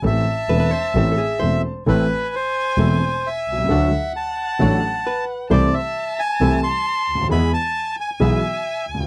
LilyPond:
<<
  \new Staff \with { instrumentName = "Violin" } { \time 4/4 \key a \minor \tempo 4 = 132 a''2.~ a''8 r8 | gis''1 | fis''1 | a''1 |
gis''1 | }
  \new Staff \with { instrumentName = "Bandoneon" } { \time 4/4 \key a \minor e''2.~ e''8 r8 | b'4 c''2 e''4~ | e''4 a''2~ a''8 r8 | d''8 e''4 gis''4 c'''4. |
b''8 a''4 gis''8 e''4. r8 | }
  \new Staff \with { instrumentName = "Hollow-body jazz guitar" } { \time 4/4 \key a \minor r4 b'16 b'16 c''8.~ c''32 a'32 gis'8 c''4 | r1 | r2. b'4 | c''8. r2. r16 |
r1 | }
  \new Staff \with { instrumentName = "Bandoneon" } { \time 4/4 \key a \minor r1 | <a c' e'>8 r4. <a c' e'>8 r4. | <a d' fis'>8 r4. <a d' fis'>8 r4. | <a c' e'>8 r4. <a c' e'>8 r4. |
<gis b e'>8 r4. <gis b e'>8 r4. | }
  \new Staff \with { instrumentName = "Grand piano" } { \clef bass \time 4/4 \key a \minor <a,, a, e a c' a'>8 r8 <e,, e, e a c' a'>8 r8 <a,, a, e a c' a'>8 r8 <e,, e, e a c' a'>8 r8 | <a,, a, e a c' a'>8 r4. <e,, e, e a c' a'>8 r4 r32 b,,32 c,32 cis,32 | <d, d fis a d' a'>8 r4. <a,, a, fis a d' a'>8 r4. | <c, c e a c' a'>8 r4. <c, c e a c' a'>8 r4 r32 cis,32 d,32 dis,32 |
<e, e gis b gis'>8 r4. <b,, b, e gis b gis'>8 r4 r32 cis,32 d,32 r32 | }
  \new Staff \with { instrumentName = "Double bass" } { \clef bass \time 4/4 \key a \minor a,,8 r8 e,,8 r8 a,,8 r8 e,,8 r8 | a,,8 r4. e,,8 r4 c,8 | d,8 r4. a,,8 r4. | c,8 r4. c,8 r4 d,8 |
e,8 r4. b,,8 r4 d,8 | }
>>